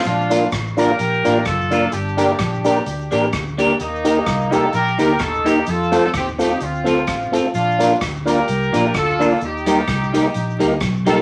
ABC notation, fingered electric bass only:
X:1
M:4/4
L:1/8
Q:"Swing" 1/4=128
K:Bb
V:1 name="Fingered electric bass" clef=bass
B,,,2 A,,,2 B,,, A,,, _G,,,2 | G,,,2 B,,,2 D,, A,,, D,,2 | E,,2 C,,2 B,,, D,, E,,2 | F,,2 E,,2 D,,2 A,,,2 |
B,,,2 D,,2 C,, B,,, D,,2 | E,,2 C,,2 B,,, D,, _C,,2 |]